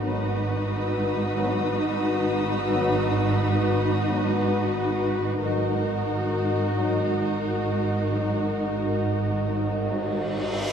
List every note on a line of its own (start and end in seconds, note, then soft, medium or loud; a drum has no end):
0.01 5.38 G#1 medium
0.01 5.38 G#2 medium
0.01 0.25 F#3 medium
0.01 0.25 B3 medium
0.01 5.38 D#4 medium
0.01 5.37 F#4 medium
0.01 5.42 B4 medium
0.01 5.38 B4 medium
0.01 5.38 F#5 medium
0.01 3.96 D#6 soft
0.69 3.96 E6 soft
1.37 1.61 F#3 medium
1.37 1.61 B3 medium
2.72 2.96 F#3 medium
2.72 2.96 B3 medium
3.96 5.03 D#6 soft
4.08 4.31 F#3 medium
4.08 4.31 B3 medium
5.40 10.57 G#1 soft
5.40 10.57 G#2 medium
5.40 5.67 F#3 medium
5.40 10.57 D#4 medium
5.40 5.67 D#4 medium
5.40 10.57 F#4 medium
5.40 10.56 A#4 medium
5.40 10.72 A#4 soft
5.40 10.72 D#5 soft
5.40 10.72 F#5 soft
6.77 7.00 F#3 soft
6.77 7.00 D#4 soft
8.11 8.35 F#3 soft
8.11 8.35 D#4 soft
8.11 reverse cymbal soft
9.45 9.69 F#3 soft
9.45 9.69 D#4 soft